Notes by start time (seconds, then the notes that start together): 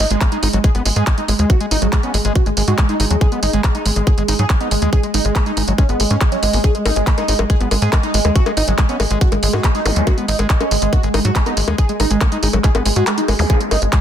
Already playing: G#3
0.11 G#1 G#3, closed hi-hat
0.21 G#3 A#3, kick, clap, closed hi-hat
0.32 G#3 D#4, closed hi-hat
0.43 G#1 G#3 D#4, open hi-hat
0.53 G#1 F#3 G#3, closed hi-hat
0.64 G#3 G#4, kick, closed hi-hat
0.75 G#1 G#3 B3, closed hi-hat
0.86 G#1 G#3, open hi-hat
0.96 G#2 G#3 G#4, closed hi-hat
1.07 G#3, kick, clap, closed hi-hat
1.18 G#3 D#4, closed hi-hat
1.28 G#1 G#3, open hi-hat
1.39 D#2 G#3, closed hi-hat
1.50 A#3 F#4, kick, closed hi-hat
1.61 G#3, closed hi-hat
1.71 G#1 D#4, open hi-hat
1.82 G#1 F#3 G#3, closed hi-hat
1.93 G#3, kick, clap, closed hi-hat
2.03 B3 C#4, closed hi-hat
2.14 G#1 G#3, open hi-hat
2.25 G#1 G#3, closed hi-hat
2.35 F#4, kick, closed hi-hat
2.46 G#1 G#3, closed hi-hat
2.57 G#1 G#3, open hi-hat
2.68 G#2 G#3 F#4, closed hi-hat
2.78 G#3 A#3, kick, clap, closed hi-hat
2.89 G#3 D#4, closed hi-hat
3.00 G#1 G#3 D#4, open hi-hat
3.11 D#2 F#3 G#3, closed hi-hat
3.21 G#3 G#4, kick, closed hi-hat
3.32 G#3 B3, closed hi-hat
3.43 G#1 G#3 D#4, open hi-hat
3.53 G#1 G#3, closed hi-hat
3.64 G#3, kick, clap, closed hi-hat
3.75 G#3 D#4, closed hi-hat
3.86 G#1 G#3, open hi-hat
3.96 G#1 G#3, closed hi-hat
4.07 A#3 G#4, kick, closed hi-hat
4.18 G#1 G#3, closed hi-hat
4.28 G#1 G#3 D#4, open hi-hat
4.39 G#2 F#3 G#4, closed hi-hat
4.50 G#3, kick, clap, closed hi-hat
4.61 B3 D#4, closed hi-hat
4.71 G#1 G#3, open hi-hat
4.82 D#2 G#3, closed hi-hat
4.93 G#4, kick, closed hi-hat
5.03 G#3, closed hi-hat
5.14 G#1 G#3 D#4, open hi-hat
5.25 G#1 G#3, closed hi-hat
5.36 G#3 A#3, kick, clap, closed hi-hat
5.46 G#3 D#4, closed hi-hat
5.57 G#1 G#3 D#4, open hi-hat
5.68 G#1 F#3 G#3, closed hi-hat
5.78 G#3 C#4, kick, closed hi-hat
5.89 G#1 G#3 B3, closed hi-hat
6.00 G#1 G#3, open hi-hat
6.11 G#2 G#3 C#4, closed hi-hat
6.21 G#3, kick, clap, closed hi-hat
6.32 F#3 C#4, closed hi-hat
6.43 G#1 G#3, open hi-hat
6.53 G#1 G#3 B3, open hi-hat
6.64 G#4, kick, closed hi-hat, high bongo
6.75 G#3, closed hi-hat
6.86 G#1 G#3 D#4, open hi-hat, high bongo
6.96 G#1 G#3, closed hi-hat
7.07 A#3, kick, clap, closed hi-hat
7.18 G#3 D#4, closed hi-hat, high bongo
7.28 G#1 G#3 D#4, open hi-hat
7.39 G#1 F#3 G#3, high bongo
7.50 G#3 G#4, kick, closed hi-hat
7.60 G#1 G#3 B3, closed hi-hat
7.71 G#1 G#3, open hi-hat, high bongo
7.82 G#2 G#3 G#4, closed hi-hat
7.93 G#3, kick, clap, closed hi-hat, high bongo
8.03 G#3 D#4, closed hi-hat
8.14 G#1 G#3, open hi-hat
8.25 D#2 G#3, closed hi-hat, high bongo
8.36 A#3 F#4, kick, closed hi-hat
8.46 G#3, closed hi-hat, high bongo
8.57 G#1 D#4, open hi-hat
8.68 G#1 F#3 G#3, closed hi-hat
8.78 G#3, kick, clap, closed hi-hat, high bongo
8.89 B3 C#4, closed hi-hat
9.00 G#1 G#3, open hi-hat, high bongo
9.11 G#1 G#3, closed hi-hat
9.21 F#4, kick, closed hi-hat
9.32 G#1 G#3, closed hi-hat, high bongo
9.43 G#1 G#3, open hi-hat
9.53 G#2 G#3 F#4, high bongo
9.64 G#3 A#3, kick, clap, closed hi-hat
9.75 G#3 D#4, closed hi-hat
9.86 G#1 G#3 D#4, open hi-hat, zap, high bongo
9.96 D#2 F#3 G#3, closed hi-hat
10.07 G#3 F#4, kick, closed hi-hat, high bongo
10.18 G#3 B3, closed hi-hat
10.28 G#1 G#3 D#4, open hi-hat
10.39 G#1 G#3, closed hi-hat, high bongo
10.50 G#3, kick, clap, closed hi-hat
10.61 G#3 C#4, closed hi-hat, high bongo
10.71 G#1 G#3, open hi-hat
10.82 G#1 G#3, closed hi-hat
10.93 A#3 F#4, kick, closed hi-hat, high bongo
11.03 G#1 G#3, closed hi-hat
11.14 G#1 G#3 D#4, open hi-hat, high bongo
11.25 G#2 F#3 F#4, closed hi-hat
11.36 G#3, kick, clap, closed hi-hat
11.46 B3 D#4, closed hi-hat, high bongo
11.57 G#1 G#3, open hi-hat
11.68 D#2 G#3, closed hi-hat, high bongo
11.78 G#4, kick, closed hi-hat
11.89 G#3, closed hi-hat
12.00 G#1 G#3 D#4, open hi-hat, high bongo
12.11 G#1 G#3, closed hi-hat
12.21 G#3 A#3, kick, clap, closed hi-hat, high bongo
12.32 G#3 D#4, closed hi-hat
12.43 G#1 G#3 D#4, open hi-hat
12.53 G#1 F#3 G#3, closed hi-hat, high bongo
12.64 G#3 G#4, kick, clap, closed hi-hat
12.75 G#1 G#3 B3, closed hi-hat, high bongo
12.86 G#1 G#3, open hi-hat
12.96 G#2 G#3 F#4, closed hi-hat
13.07 G#3, clap, closed hi-hat, high bongo
13.18 G#3 D#4, closed hi-hat
13.28 G#1 G#3, open hi-hat, high bongo
13.39 D#2 G#3, open hi-hat, zap
13.50 G#3 G#4, kick, closed hi-hat, high bongo
13.61 G#3, closed hi-hat
13.71 G#1 G#3 D#4, open hi-hat, high bongo
13.82 G#1 G#3, closed hi-hat
13.93 G#3, kick, clap, closed hi-hat